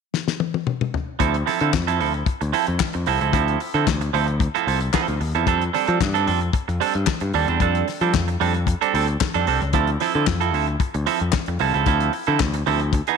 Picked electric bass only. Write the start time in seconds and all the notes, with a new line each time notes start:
1.20 D2
1.61 D3
1.74 F2
2.01 D2
2.42 D2
2.68 F2
2.95 F2
3.07 C2
3.21 C#2
3.34 D2
3.74 D3
3.88 D2
4.14 D2
4.67 C2
5.08 D2
5.21 D#2
5.35 E2
5.47 F2
5.88 F3
6.01 G2
6.28 F2
6.69 F2
6.95 G2
7.21 G2
7.34 D#2
7.48 E2
7.60 F2
8.01 F3
8.14 F2
8.41 F2
8.94 D2
9.35 F2
9.48 C2
9.62 C#2
9.74 D2
10.15 D3
10.27 F2
10.54 D2
10.95 D2
11.21 F2
11.48 F2
11.60 C2
11.75 C#2
11.87 D2
12.28 D3
12.40 D2
12.67 D2